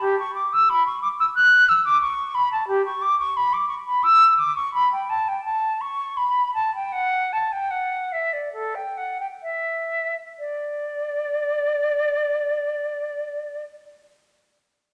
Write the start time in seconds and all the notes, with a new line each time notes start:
0.01 G4
0.19 C#6
0.35 D6
0.53 E6
0.69 B5
0.86 C#6
1.02 D6
1.20 E6
1.35 F#6
1.69 E6
1.85 D6
2.01 C#6
2.34 B5
2.52 A5
2.68 G4
2.86 C#6
3.01 D6
3.20 C#6
3.36 B5
3.53 D6
3.69 C#6
3.87 B5
4.03 E6
4.37 D6
4.55 C#6
4.74 B5
4.92 G5
5.09 A5
5.28 G5
5.44 A5
5.81 C#6
6.17 B5
6.54 A5
6.75 G5
6.92 F#5
7.32 A5
7.52 G5
7.71 F#5
8.12 E5
8.33 D5
8.53 A4
8.75 G5
8.97 F#5
9.20 G5
9.42 E5
10.38 D5